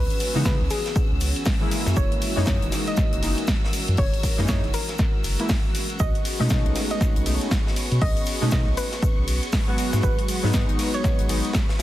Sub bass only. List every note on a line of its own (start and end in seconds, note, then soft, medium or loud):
0.35 0.43 C#3 medium
0.45 0.57 C#3 medium
0.61 0.68 C#2 medium
1.11 1.19 C#2 medium
1.21 1.33 C#2 medium
1.87 1.94 F#2 loud
1.97 2.09 F#1 loud
2.37 2.45 F#2 medium
2.47 2.59 F#2 medium
2.62 2.70 F#1 medium
3.13 3.20 F#1 medium
3.23 3.35 F#1 medium
3.88 3.96 F#2 loud
3.98 4.10 F#1 loud
4.39 4.46 F#2 medium
4.49 4.61 F#2 medium
4.64 4.72 F#1 medium
5.24 5.36 F#1 medium
6.00 6.12 B1 loud
6.40 6.48 B2 loud
6.50 6.62 B2 medium
6.66 6.73 B1 medium
7.16 7.24 B1 medium
7.26 7.38 B1 medium
7.92 7.99 B2 loud
8.02 8.14 B1 loud
8.42 8.50 B2 medium
8.52 8.64 B2 medium
8.67 8.75 B1 medium
9.18 9.25 B1 medium
9.28 9.40 B1 medium
9.93 10.01 G#2 loud
10.03 10.15 G#1 loud
10.44 10.52 G#2 loud
10.54 10.66 G#2 medium
10.69 10.77 G#1 medium
11.19 11.27 G#1 medium
11.29 11.41 G#1 medium